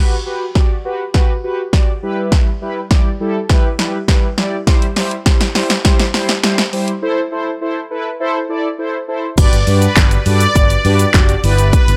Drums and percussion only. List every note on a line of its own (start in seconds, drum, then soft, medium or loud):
0.55 kick loud
0.55 snare medium
1.14 kick loud
1.14 snare medium
1.73 kick loud
1.73 snare medium
2.32 kick loud
2.32 snare medium
2.91 kick loud
2.91 snare medium
3.49 kick loud
3.49 snare medium
3.79 snare medium
4.08 kick loud
4.08 snare medium
4.38 snare medium
4.67 kick loud
4.67 snare loud
4.67 closed hi-hat medium
4.82 closed hi-hat medium
4.96 snare medium
4.96 open hi-hat medium
5.11 closed hi-hat soft
5.26 kick loud
5.26 snare loud
5.26 closed hi-hat medium
5.41 snare loud
5.41 closed hi-hat medium
5.55 snare loud
5.55 open hi-hat medium
5.70 snare loud
5.70 closed hi-hat medium
5.85 kick loud
5.85 snare loud
5.85 closed hi-hat medium
5.99 snare loud
5.99 closed hi-hat soft
6.14 snare loud
6.14 open hi-hat medium
6.29 snare loud
6.29 closed hi-hat medium
6.44 snare loud
6.44 closed hi-hat medium
6.58 snare loud
6.58 closed hi-hat soft
6.73 open hi-hat medium
6.88 closed hi-hat medium
9.38 kick loud
9.38 closed hi-hat medium
9.38 crash loud
9.38 shaker medium
9.53 closed hi-hat medium
9.53 shaker medium
9.67 open hi-hat medium
9.67 shaker soft
9.82 closed hi-hat soft
9.82 shaker medium
9.96 kick loud
9.96 snare medium
9.96 clap loud
9.96 closed hi-hat medium
9.96 shaker medium
10.11 closed hi-hat medium
10.11 shaker medium
10.26 open hi-hat medium
10.26 shaker medium
10.40 closed hi-hat medium
10.40 shaker medium
10.56 kick loud
10.56 closed hi-hat medium
10.56 shaker medium
10.70 closed hi-hat medium
10.70 shaker medium
10.85 open hi-hat medium
10.85 shaker soft
10.99 closed hi-hat medium
10.99 shaker medium
11.14 kick loud
11.14 snare medium
11.14 clap loud
11.14 closed hi-hat medium
11.14 shaker medium
11.29 closed hi-hat soft
11.29 shaker medium
11.44 open hi-hat medium
11.44 shaker medium
11.58 closed hi-hat medium
11.58 shaker medium
11.73 kick loud
11.73 closed hi-hat medium
11.73 shaker medium
11.88 closed hi-hat medium
11.88 shaker medium